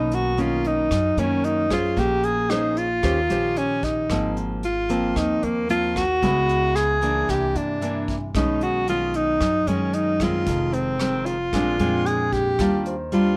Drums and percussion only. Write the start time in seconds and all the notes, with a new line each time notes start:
0.11 closed hi-hat
0.38 closed hi-hat
0.64 closed hi-hat
0.91 kick, cross-stick, closed hi-hat
1.17 closed hi-hat
1.44 closed hi-hat
1.71 kick, cross-stick, closed hi-hat
1.97 kick, closed hi-hat
2.23 closed hi-hat
2.50 cross-stick, closed hi-hat
2.77 closed hi-hat
3.03 kick, cross-stick, closed hi-hat
3.30 closed hi-hat
3.56 closed hi-hat
3.83 kick, closed hi-hat
4.10 kick, cross-stick, closed hi-hat
4.37 closed hi-hat
4.63 closed hi-hat
4.90 closed hi-hat
5.16 kick, cross-stick, closed hi-hat
5.43 closed hi-hat
5.70 closed hi-hat
5.96 kick, cross-stick, closed hi-hat
6.22 kick, closed hi-hat
6.49 closed hi-hat
6.76 cross-stick, closed hi-hat
7.02 closed hi-hat
7.29 kick, cross-stick, closed hi-hat
7.55 closed hi-hat
7.82 closed hi-hat
8.08 kick, closed hi-hat
8.35 kick, cross-stick, closed hi-hat
8.61 closed hi-hat
8.88 closed hi-hat
9.14 closed hi-hat
9.41 kick, cross-stick, closed hi-hat
9.67 closed hi-hat
9.93 closed hi-hat
10.20 kick, cross-stick, closed hi-hat
10.46 kick, closed hi-hat
10.73 closed hi-hat
11.00 cross-stick, closed hi-hat
11.26 closed hi-hat
11.53 kick, cross-stick, closed hi-hat
11.79 closed hi-hat
12.06 closed hi-hat
12.32 kick, closed hi-hat
12.59 kick, cross-stick, closed hi-hat
12.85 closed hi-hat
13.12 closed hi-hat